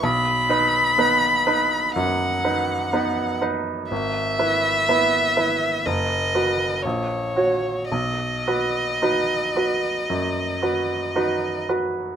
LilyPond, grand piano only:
\new Staff \with { instrumentName = "Grand piano" } { \time 4/4 \key b \major \tempo 4 = 61 b,,8 <dis' b'>8 <b dis' b'>8 <dis' b'>8 fis,8 <dis' b'>8 <b dis' b'>8 <dis' b'>8 | gis,,8 <e' b'>8 <b e' b'>8 <e' b'>8 fis,,8 <fis' b'>8 ais,,8 <fis' cis''>8 | b,,8 <fis' b'>8 <dis' fis' b'>8 <fis' b'>8 fis,8 <fis' b'>8 <dis' fis' b'>8 <fis' b'>8 | }